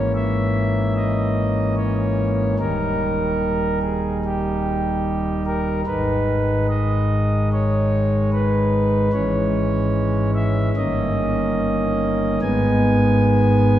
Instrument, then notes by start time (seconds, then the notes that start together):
pipe organ
Already playing: G#1 G#2 E3 A#3 C#4 C#5
0.15 E5
0.96 D#5
1.76 C#5
2.59 D#1 D#2 D#3 G3 D#4 A#4
3.82 G#4
4.24 G4
5.46 A#4
5.86 G#1 G#2 D#3 G#3 D#4 B4
6.69 D#5
7.52 C#5
8.33 B4
9.13 G#1 G#2 E3 G#3 C#4 C#5
10.35 E5
10.76 G1 G2 D#3 A#3 C#4 D#5
12.42 G#1 G#2 D#3 G#3 B3 G#5